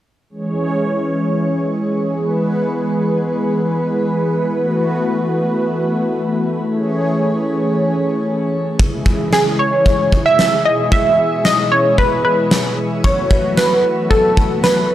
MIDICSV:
0, 0, Header, 1, 4, 480
1, 0, Start_track
1, 0, Key_signature, 4, "minor"
1, 0, Tempo, 530973
1, 271, Time_signature, 4, 2, 24, 8
1, 13512, End_track
2, 0, Start_track
2, 0, Title_t, "Analog polysynth"
2, 0, Program_c, 0, 90
2, 8432, Note_on_c, 0, 68, 90
2, 8655, Note_off_c, 0, 68, 0
2, 8671, Note_on_c, 0, 73, 107
2, 9235, Note_off_c, 0, 73, 0
2, 9272, Note_on_c, 0, 76, 110
2, 9606, Note_off_c, 0, 76, 0
2, 9631, Note_on_c, 0, 75, 97
2, 9872, Note_on_c, 0, 76, 112
2, 9878, Note_off_c, 0, 75, 0
2, 10351, Note_on_c, 0, 75, 98
2, 10366, Note_off_c, 0, 76, 0
2, 10592, Note_on_c, 0, 73, 90
2, 10598, Note_off_c, 0, 75, 0
2, 10815, Note_off_c, 0, 73, 0
2, 10832, Note_on_c, 0, 71, 95
2, 11060, Note_off_c, 0, 71, 0
2, 11070, Note_on_c, 0, 71, 88
2, 11517, Note_off_c, 0, 71, 0
2, 11791, Note_on_c, 0, 73, 97
2, 12271, Note_on_c, 0, 71, 89
2, 12285, Note_off_c, 0, 73, 0
2, 12718, Note_off_c, 0, 71, 0
2, 12750, Note_on_c, 0, 69, 97
2, 13197, Note_off_c, 0, 69, 0
2, 13231, Note_on_c, 0, 71, 94
2, 13512, Note_off_c, 0, 71, 0
2, 13512, End_track
3, 0, Start_track
3, 0, Title_t, "Analog synth pad"
3, 0, Program_c, 1, 89
3, 270, Note_on_c, 1, 61, 68
3, 270, Note_on_c, 1, 68, 68
3, 270, Note_on_c, 1, 73, 81
3, 271, Note_on_c, 1, 52, 72
3, 271, Note_on_c, 1, 56, 70
3, 1934, Note_off_c, 1, 52, 0
3, 1934, Note_off_c, 1, 61, 0
3, 1934, Note_off_c, 1, 73, 0
3, 1950, Note_on_c, 1, 52, 75
3, 1950, Note_on_c, 1, 71, 81
3, 1951, Note_on_c, 1, 59, 68
3, 4075, Note_off_c, 1, 56, 0
3, 4075, Note_off_c, 1, 68, 0
3, 4089, Note_off_c, 1, 59, 0
3, 4111, Note_on_c, 1, 59, 68
3, 4112, Note_on_c, 1, 57, 71
3, 4112, Note_on_c, 1, 66, 68
3, 5995, Note_off_c, 1, 52, 0
3, 5995, Note_off_c, 1, 71, 0
3, 6012, Note_off_c, 1, 59, 0
3, 6012, Note_off_c, 1, 66, 0
3, 6031, Note_on_c, 1, 52, 77
3, 6031, Note_on_c, 1, 61, 68
3, 6031, Note_on_c, 1, 73, 81
3, 6032, Note_on_c, 1, 68, 68
3, 7915, Note_off_c, 1, 57, 0
3, 7932, Note_off_c, 1, 52, 0
3, 7932, Note_off_c, 1, 61, 0
3, 7932, Note_off_c, 1, 68, 0
3, 7932, Note_off_c, 1, 73, 0
3, 7950, Note_on_c, 1, 49, 75
3, 7951, Note_on_c, 1, 52, 70
3, 7951, Note_on_c, 1, 56, 69
3, 7951, Note_on_c, 1, 64, 68
3, 7951, Note_on_c, 1, 68, 81
3, 9614, Note_off_c, 1, 49, 0
3, 9614, Note_off_c, 1, 52, 0
3, 9614, Note_off_c, 1, 56, 0
3, 9631, Note_on_c, 1, 47, 72
3, 9631, Note_on_c, 1, 52, 68
3, 9631, Note_on_c, 1, 56, 66
3, 11755, Note_off_c, 1, 64, 0
3, 11755, Note_off_c, 1, 68, 0
3, 11769, Note_off_c, 1, 47, 0
3, 11769, Note_off_c, 1, 56, 0
3, 11790, Note_on_c, 1, 54, 68
3, 11790, Note_on_c, 1, 57, 70
3, 11790, Note_on_c, 1, 59, 69
3, 11790, Note_on_c, 1, 66, 82
3, 13512, Note_off_c, 1, 52, 0
3, 13512, Note_off_c, 1, 54, 0
3, 13512, Note_off_c, 1, 57, 0
3, 13512, Note_off_c, 1, 59, 0
3, 13512, Note_off_c, 1, 66, 0
3, 13512, End_track
4, 0, Start_track
4, 0, Title_t, "Drums"
4, 7950, Note_on_c, 9, 36, 110
4, 8041, Note_off_c, 9, 36, 0
4, 8189, Note_on_c, 9, 36, 94
4, 8280, Note_off_c, 9, 36, 0
4, 8431, Note_on_c, 9, 38, 106
4, 8521, Note_off_c, 9, 38, 0
4, 8912, Note_on_c, 9, 36, 81
4, 9002, Note_off_c, 9, 36, 0
4, 9152, Note_on_c, 9, 36, 89
4, 9243, Note_off_c, 9, 36, 0
4, 9392, Note_on_c, 9, 38, 107
4, 9482, Note_off_c, 9, 38, 0
4, 9870, Note_on_c, 9, 36, 107
4, 9961, Note_off_c, 9, 36, 0
4, 10351, Note_on_c, 9, 38, 107
4, 10441, Note_off_c, 9, 38, 0
4, 10832, Note_on_c, 9, 36, 85
4, 10922, Note_off_c, 9, 36, 0
4, 11312, Note_on_c, 9, 38, 110
4, 11402, Note_off_c, 9, 38, 0
4, 11791, Note_on_c, 9, 36, 106
4, 11881, Note_off_c, 9, 36, 0
4, 12029, Note_on_c, 9, 36, 95
4, 12120, Note_off_c, 9, 36, 0
4, 12271, Note_on_c, 9, 38, 114
4, 12362, Note_off_c, 9, 38, 0
4, 12752, Note_on_c, 9, 36, 80
4, 12843, Note_off_c, 9, 36, 0
4, 12993, Note_on_c, 9, 36, 89
4, 13083, Note_off_c, 9, 36, 0
4, 13233, Note_on_c, 9, 38, 105
4, 13323, Note_off_c, 9, 38, 0
4, 13512, End_track
0, 0, End_of_file